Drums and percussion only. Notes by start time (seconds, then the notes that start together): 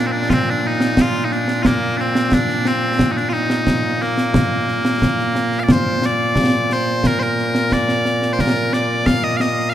0.30 concert bass drum, snare
0.80 snare
0.97 concert bass drum, snare
1.31 snare
1.48 snare
1.65 concert bass drum, snare
1.99 snare
2.15 snare
2.32 concert bass drum, snare
2.49 snare
2.65 snare
2.99 concert bass drum, snare
3.17 snare
3.33 snare
3.50 snare
3.67 concert bass drum, snare
4.01 snare
4.17 snare
4.34 concert bass drum, snare
4.68 snare
4.85 snare
5.02 concert bass drum, snare
5.19 snare
5.35 snare
5.52 snare
5.68 concert bass drum, snare
6.02 snare
6.36 concert bass drum, snare
6.70 snare
7.04 concert bass drum, snare
7.21 snare
7.38 snare
7.55 snare
7.72 concert bass drum, snare
7.88 snare
8.05 snare
8.22 snare
8.39 concert bass drum, snare
8.73 snare
9.06 concert bass drum, snare
9.40 snare